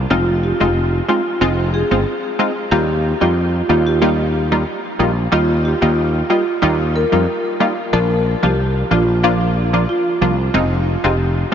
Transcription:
0.10 0.51 F1 loud
0.10 0.56 G#3 medium
0.10 0.56 C4 medium
0.10 0.56 D#4 medium
0.10 0.56 F4 loud
0.10 0.26 F4 loud
0.43 0.59 G4 medium
0.60 1.00 F1 loud
0.60 0.72 G#3 medium
0.60 0.72 C4 medium
0.60 0.72 D#4 medium
0.60 0.74 F4 medium
0.60 0.72 F4 medium
1.08 1.21 G#3 medium
1.08 1.21 C4 medium
1.08 1.21 D#4 medium
1.08 1.24 F4 medium
1.08 1.22 F4 medium
1.41 1.82 F1 loud
1.41 1.87 G#3 loud
1.41 1.87 C4 medium
1.41 1.87 D#4 medium
1.41 1.87 F4 loud
1.74 1.89 G#4 medium
1.91 2.03 G1 medium
1.91 2.02 G#3 medium
1.91 2.02 C4 medium
1.91 2.03 D#4 medium
1.91 2.03 F4 medium
2.39 2.52 G#3 medium
2.39 2.52 C4 medium
2.39 2.52 D#4 medium
2.39 2.52 F4 medium
2.71 3.12 D#2 loud
2.71 3.17 G3 medium
2.71 3.17 A#3 medium
2.71 3.17 D#4 medium
2.71 3.18 F4 loud
2.71 2.87 G4 loud
3.21 3.60 F2 medium
3.21 3.33 G3 medium
3.21 3.33 A#3 medium
3.21 3.33 D#4 medium
3.21 3.35 F4 medium
3.21 3.33 F4 medium
3.69 4.63 D#2 medium
3.69 3.82 G3 medium
3.69 3.82 A#3 medium
3.69 3.82 D#4 medium
3.69 3.85 F4 medium
3.69 3.82 F4 medium
3.87 4.00 G4 medium
4.02 4.48 G3 loud
4.02 4.48 A#3 medium
4.02 4.48 D#4 medium
4.02 4.48 F4 loud
4.52 4.63 G3 medium
4.52 4.63 A#3 medium
4.52 4.63 D#4 medium
4.52 4.63 F4 medium
4.99 5.26 A#1 loud
4.99 5.12 G3 medium
4.99 5.12 A#3 medium
4.99 5.12 D#4 medium
4.99 5.13 F4 medium
5.32 5.73 D#2 loud
5.32 5.78 G3 medium
5.32 5.78 A#3 medium
5.32 5.78 D#4 medium
5.32 5.78 F4 loud
5.32 5.48 F4 loud
5.65 5.81 G4 medium
5.82 6.21 D#2 loud
5.82 5.93 G3 medium
5.82 5.93 A#3 medium
5.82 5.94 D#4 medium
5.82 5.94 F4 medium
5.82 5.96 F4 medium
6.30 6.43 G3 medium
6.30 6.43 A#3 medium
6.30 6.43 D#4 medium
6.30 6.43 F4 medium
6.30 6.46 F4 medium
6.62 7.03 D#2 loud
6.62 7.08 G3 loud
6.62 7.08 A#3 medium
6.62 7.08 D#4 medium
6.62 7.08 F4 loud
6.96 7.11 A#4 medium
7.12 7.25 F2 medium
7.12 7.24 G3 medium
7.12 7.24 A#3 medium
7.12 7.24 D#4 medium
7.12 7.24 F4 medium
7.60 7.73 G3 medium
7.60 7.73 A#3 medium
7.60 7.73 D#4 medium
7.60 7.73 F4 medium
7.93 8.34 A#1 loud
7.93 8.39 F3 loud
7.93 8.39 A#3 medium
7.93 8.39 D4 medium
7.93 8.39 F4 loud
7.93 8.09 A#4 medium
8.43 8.82 C2 medium
8.43 8.54 F3 medium
8.43 8.54 A#3 medium
8.43 8.54 D4 medium
8.43 8.55 F4 medium
8.43 8.57 G4 medium
8.91 9.85 A#1 medium
8.91 9.04 F3 medium
8.91 9.04 A#3 medium
8.91 9.04 D4 medium
8.91 9.04 F4 medium
8.91 9.07 F4 medium
9.23 9.69 F3 loud
9.23 9.70 A#3 medium
9.23 9.70 D4 medium
9.23 9.70 F4 loud
9.73 9.85 F3 medium
9.73 9.85 A#3 medium
9.73 9.85 D4 medium
9.73 9.85 F4 medium
9.89 10.36 F4 medium
10.21 10.48 C2 medium
10.21 10.34 F3 medium
10.21 10.34 A#3 medium
10.21 10.34 D4 medium
10.21 10.35 F4 medium
10.54 10.95 F1 loud
10.54 11.00 G#3 loud
10.54 11.00 C4 medium
10.54 11.00 D#4 medium
10.54 11.00 F4 loud
11.04 11.43 F1 loud
11.04 11.15 G#3 medium
11.04 11.15 C4 medium
11.04 11.16 D#4 medium
11.04 11.16 F4 medium
11.04 11.18 G4 medium

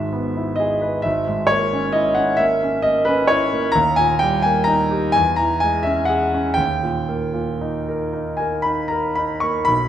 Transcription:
0.00 1.01 G#1 soft
0.00 0.27 G#2 soft
0.00 0.57 E5 medium
0.13 0.50 B3 soft
0.36 0.73 E4 soft
0.56 0.96 G#4 soft
0.56 1.03 D#5 medium
0.82 1.05 B4 soft
1.02 3.71 G#1 medium
1.02 1.49 E5 medium
1.28 1.64 G#2 soft
1.47 1.93 C#5 medium
1.51 1.86 A#3 soft
1.73 2.09 C#4 soft
1.92 2.31 E4 soft
1.92 2.16 D#5 medium
2.15 2.54 C#4 soft
2.15 2.39 F#5 medium
2.37 2.76 A#3 soft
2.37 2.83 E5 medium
2.63 2.99 C#4 soft
2.82 3.21 A#3 soft
2.82 3.06 D#5 medium
3.05 3.44 C#4 soft
3.05 3.28 B4 medium
3.27 3.66 E4 soft
3.27 3.73 C#5 medium
3.53 3.75 A#3 soft
3.72 5.10 D#2 medium
3.72 3.96 A#5 medium
3.96 4.35 A#2 soft
3.96 4.20 G#5 medium
4.19 4.59 G3 soft
4.19 4.43 G5 medium
4.42 4.82 A#3 soft
4.42 4.66 G#5 medium
4.64 5.05 D#4 soft
4.64 5.12 A#5 medium
4.91 5.14 G4 soft
5.12 6.56 E2 medium
5.12 5.37 G#5 medium
5.36 5.77 E3 soft
5.36 5.61 A#5 medium
5.60 6.01 G#3 soft
5.60 5.85 G#5 medium
5.83 6.24 C#4 soft
5.83 6.08 E5 medium
6.05 6.56 F#5 medium
6.10 6.49 G#4 soft
6.34 6.59 C#4 soft
6.54 9.64 D#2 soft
6.54 8.11 G5 medium
6.83 7.24 A#2 soft
7.09 7.50 A#3 soft
7.33 7.76 A#2 soft
7.61 8.03 D#4 soft
7.89 8.29 A#4 soft
8.13 8.55 D#4 soft
8.37 8.81 A#4 soft
8.37 8.64 G#5 medium
8.62 9.08 D#4 soft
8.62 8.90 B5 medium
8.88 9.34 A#4 soft
8.88 9.16 A#5 medium
9.15 9.59 D#4 soft
9.15 9.43 B5 medium
9.40 9.69 A#3 soft
9.40 9.67 C#6 medium
9.65 9.88 B1 soft
9.65 9.88 B5 medium

